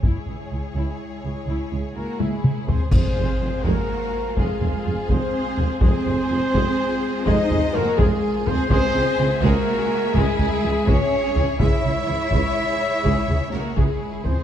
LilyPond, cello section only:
\new Staff \with { instrumentName = "Cello section" } { \time 12/8 \key f \phrygian \tempo 4. = 83 << { r1 bes8 aes4 c'8 | c'4. bes4. aes4. c'4. | c'2. ees'4 bes8 aes4 c'8 | c'4. bes4. aes4. des'4. |
fes'1 bes8 aes4 c'8 | } \\ { des,8 des,8 des,8 des,8 r8 des,8 des,8 des,8 des,8 des,8 r8 des,8 | r1. | r1. | r1. |
r1. | } >> }